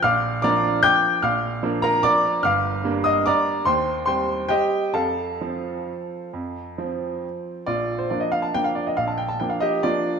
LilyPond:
<<
  \new Staff \with { instrumentName = "Upright piano" } { \time 3/4 \key bes \major \tempo 4 = 143 <f'' d''' f'''>4 <d'' bes'' d'''>4 <g'' d''' g'''>4 | <f'' d''' f'''>4. <bes' bes''>8 <d'' bes'' d'''>4 | <f'' d''' f'''>4. <ees'' ees'''>8 <d'' bes'' d'''>4 | <c'' g'' c'''>4 <c'' g'' c'''>4 <g' ees'' g''>4 |
<a' f'' a''>2.~ | <a' f'' a''>2 r4 | <f' d''>8. c''16 d''16 ees''16 f''16 a''16 g''16 f''16 d''16 ees''16 | f''16 a''16 g''16 a''16 g''16 f''16 <g' ees''>8 <f' d''>4 | }
  \new Staff \with { instrumentName = "Upright piano" } { \clef bass \time 3/4 \key bes \major bes,,4 <f bes d'>2 | bes,,4 <f bes d'>2 | g,,4 <g bes d'>2 | ees,4 <g c'>2 |
f,4 <f c'>2 | f,4 <f c'>2 | bes,,4 <f bes d'>4 <f bes d'>4 | bes,,4 <f bes d'>4 <f bes d'>4 | }
>>